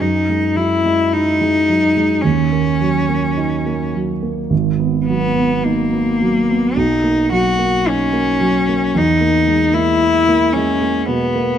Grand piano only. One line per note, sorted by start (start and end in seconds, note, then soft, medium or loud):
0.01 2.21 F#2 soft
0.29 0.75 G#3 soft
0.56 1.02 F#3 soft
0.85 1.31 G#3 soft
1.13 1.58 E4 soft
1.41 1.86 G#3 soft
1.69 2.14 F#3 soft
1.97 2.25 G#3 soft
2.24 4.47 D#2 soft
2.52 2.98 A#3 soft
2.81 3.27 F#3 soft
3.09 3.55 A#3 soft
3.37 3.83 D#4 soft
3.66 4.12 A#3 soft
3.95 4.40 F#3 soft
4.23 4.51 A#3 soft
4.50 6.73 G#1 soft
4.80 5.25 B3 soft
5.08 5.53 F#3 soft
5.36 5.81 B3 soft
5.65 6.10 D#4 soft
5.93 6.38 B3 soft
6.22 6.67 F#3 soft
6.50 6.78 B3 soft
6.77 8.92 B1 soft
7.04 7.49 A#3 soft
7.31 7.76 F#3 soft
7.59 8.04 A#3 soft
7.87 8.31 D#4 soft
8.13 8.58 A#3 soft
8.40 8.85 F#3 soft
8.69 8.96 A#3 soft
8.95 11.04 E2 soft
9.21 9.63 A#3 soft
9.48 9.90 G#3 soft
9.73 10.16 A#3 soft
10.01 10.44 E4 soft
10.29 10.72 A#3 soft
10.56 10.99 G#3 soft
10.82 11.25 A#3 soft
11.08 11.51 B2 soft
11.35 11.58 A#3 soft